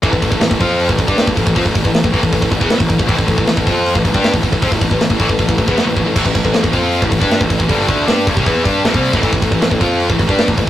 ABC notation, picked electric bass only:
X:1
M:4/4
L:1/16
Q:1/4=157
K:Am
V:1 name="Picked electric bass" clef=bass
A,,, A,,, A,,, A,,, A,,, A,,, F,,3 A,,, A,,, G,,2 A,,, A,,, A,,, | F,, A,,, A,,, A,,,2 A,,, A,,, A,,, A,,, A,,, A,,, E,, z A,,, A,,, A,,, | A,,, A,,, A,,, A,,, A,,, A,,, F,,3 A,,, A,,, G,,2 A,,, A,,, A,,, | F,, A,,, A,,, A,,,2 A,,, A,,, A,,, A,,, A,,, A,,, E,, z A,,, A,,, A,,, |
A,,, A,,, A,,, A,,, A,,, A,,, F,,3 A,,, A,,, G,,2 A,,, A,,, A,,, | G,,,2 D,,2 G,,2 G,,, C,, E,,2 G,,2 A,,, C,,2 A,,, | A,,, A,,, A,,, A,,, A,,, A,,, F,,3 A,,, A,,, G,,2 A,,, A,,, z |]